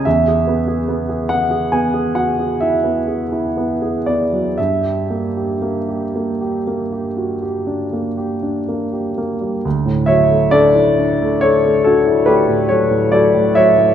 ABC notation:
X:1
M:5/4
L:1/16
Q:1/4=67
K:G
V:1 name="Grand piano"
e6 f2 ^g2 f2 e6 d2 | e16- e2 z2 | z2 [^ce]2 [Ad]4 [Ac]2 [FA]2 [GB]2 [Ac]2 [Ad]2 [ce]2 |]
V:2 name="Grand piano"
E,, ^G B, G B, G B, G B, G F G E B, G E B, G B, F, | G,, G _B, G B, G B, G B, G F G D B, G D B, G B, G, | D,, A,, F, A, D E D A, D A, D E A, A,, F, A,, F, A,, F, A,, |]